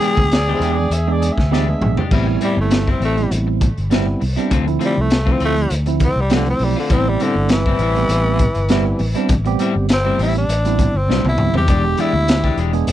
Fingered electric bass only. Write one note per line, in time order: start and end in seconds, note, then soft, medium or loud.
0.17 0.54 D2 medium
0.60 0.85 E2 medium
0.90 1.29 E2 medium
1.37 1.74 D2 medium
1.81 1.95 A#1 medium
2.11 2.36 A1 medium
2.57 2.94 G1 medium
3.00 3.26 A1 medium
3.31 3.69 A1 medium
3.78 4.14 G1 medium
4.22 4.35 C2 medium
4.51 4.76 D2 medium
4.98 5.34 C2 medium
5.41 5.66 D2 medium
5.71 6.09 D2 medium
6.16 6.53 C2 medium
6.60 6.74 B1 medium
6.90 7.15 A1 medium
7.35 7.72 G1 medium
7.79 8.04 A1 medium
8.09 8.47 A1 medium
8.56 8.92 G1 medium
9.00 9.13 A1 medium
9.29 9.54 A1 medium
9.75 10.12 G1 medium
10.19 10.44 A1 loud
10.48 10.87 A1 medium
10.94 11.06 G1 medium
11.08 11.23 B1 medium
11.24 11.37 C2 medium
11.38 11.53 D2 medium
11.53 11.67 E2 medium
11.68 11.93 E1 medium
12.13 12.50 D2 medium
12.57 12.83 E1 medium
12.87 12.92 E1 medium